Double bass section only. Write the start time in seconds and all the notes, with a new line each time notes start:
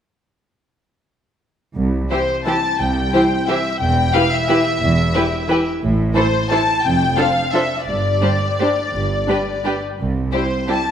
1.76 C2
2.79 C2
3.81 E1
4.81 E1
5.82 A1
6.84 F1
7.87 G1
8.94 G1
10.00 C2